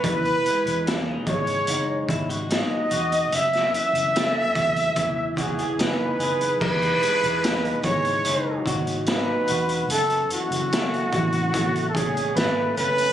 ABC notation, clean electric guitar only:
X:1
M:4/4
L:1/16
Q:1/4=73
K:E
V:1 name="Clean electric guitar"
E,2 G,2 C D G,2 D2 E F D2 F2 | F,,2 E,2 A,2 E,2 E,2 F G D2 G2 | E,2 G,2 D2 G,2 D2 F2 D2 F2 | F,,2 E,2 A,2 E,2 A,2 C2 A,2 C2 |]